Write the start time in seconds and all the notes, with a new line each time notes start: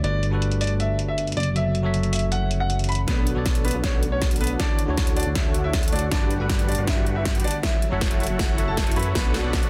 Already playing: D3
0.03 G1 G3 D4 F#4 A4 B4 D5, closed hi-hat
0.23 closed hi-hat
0.30 G3 D4 F#4 A4
0.34 B4
0.42 closed hi-hat
0.52 closed hi-hat
0.61 D5, closed hi-hat, open hi-hat
0.67 closed hi-hat
0.80 E5, closed hi-hat
0.99 closed hi-hat
1.08 E5
1.18 closed hi-hat
1.27 closed hi-hat
1.32 closed hi-hat
1.37 F#1 D5, closed hi-hat
1.40 closed hi-hat
1.43 closed hi-hat
1.55 F#3 F#4 A4 C#5 E5, closed hi-hat
1.75 closed hi-hat
1.82 F#3 F#4 A4 C#5
1.86 E5
1.94 closed hi-hat
2.03 closed hi-hat
2.13 E5, closed hi-hat, open hi-hat
2.19 closed hi-hat
2.32 F#5, closed hi-hat
2.51 closed hi-hat
2.60 F#5
2.70 closed hi-hat
2.79 closed hi-hat
2.84 closed hi-hat
2.89 B5, closed hi-hat
2.92 closed hi-hat
2.95 closed hi-hat
3.07 B1 D3 A3 B3 D4 F#4 A4 B4 C#5 D5 F#5, kick, snare, closed hi-hat
3.27 closed hi-hat
3.34 B1 B3 D4 F#4 A4 B4 C#5 D5 F#5
3.46 kick, snare, closed hi-hat
3.55 closed hi-hat
3.65 B3 B4, closed hi-hat
3.68 closed hi-hat
3.71 B1 D4 F#4 A4 B4 F#5, closed hi-hat
3.84 C#4 C#5, kick, snare, closed hi-hat
4.03 closed hi-hat
4.12 C#4 C#5
4.22 kick, snare, closed hi-hat
4.31 closed hi-hat
4.36 closed hi-hat
4.41 B3 B4, closed hi-hat
4.44 closed hi-hat
4.47 closed hi-hat
4.59 D3 D4 E4 F#4 C#5 D5 F#5, kick, snare, closed hi-hat
4.79 closed hi-hat
4.86 D2 D3 D4 E4 F#4 A4 C#5 F#5
4.97 kick, snare, closed hi-hat
5.07 closed hi-hat
5.17 D4 D5, closed hi-hat
5.20 closed hi-hat
5.23 D2 D4 F#4 A4 C#5 F#5, closed hi-hat
5.35 E4 E5, kick, snare, closed hi-hat
5.54 closed hi-hat
5.64 E4 E5
5.73 kick, snare, closed hi-hat
5.83 closed hi-hat
5.88 closed hi-hat
5.92 D2 D4 F#4 A4 C#5 D5 F#5, closed hi-hat
5.96 closed hi-hat
5.99 closed hi-hat
6.11 G1 G3 D4 F#4 G4 A4 B4 D5 F#5, kick, snare, closed hi-hat
6.31 closed hi-hat
6.38 G1 G3 D4 F#4 G4 A4 B4 F#5
6.42 B4
6.49 kick, snare, closed hi-hat
6.59 closed hi-hat
6.68 D4 D5, closed hi-hat
6.72 closed hi-hat
6.75 G1 D4 F#4 G4 B4 F#5, closed hi-hat
6.87 E4 E5, kick, snare, closed hi-hat
7.06 closed hi-hat
7.16 E4 E5
7.25 kick, snare, closed hi-hat
7.35 closed hi-hat
7.40 closed hi-hat
7.44 A3 D4 D5, closed hi-hat
7.48 closed hi-hat
7.51 closed hi-hat
7.62 F#3 E4 F#4 A4 C#5 E5, kick, snare, closed hi-hat
7.82 closed hi-hat
7.90 F#1 F#3 E4 F#4 A4 C#5 F#5
7.94 E5
8.01 kick, snare, closed hi-hat
8.11 closed hi-hat
8.20 E4 E5, closed hi-hat
8.23 closed hi-hat
8.27 F#1 E4 F#4 A4 C#5 F#5, closed hi-hat
8.39 F#4 F#5, kick, snare, closed hi-hat
8.57 F#3 F#4 A4 C#5 E5, closed hi-hat
8.68 A4 A5
8.77 kick, snare, closed hi-hat
8.87 closed hi-hat
8.92 F#3, closed hi-hat
8.96 F#2 E4 F#4 A4 B4 C#5 E5 F#5 B5, closed hi-hat
8.99 closed hi-hat
9.03 closed hi-hat
9.14 B1 B3 D4 F#4 A4 B4 C#5 F#5, kick, snare, closed hi-hat, riser
9.34 snare, closed hi-hat
9.42 B1 B3 D4 F#4 A4 B4 C#5 D5 F#5
9.53 kick, snare, closed hi-hat
9.63 closed hi-hat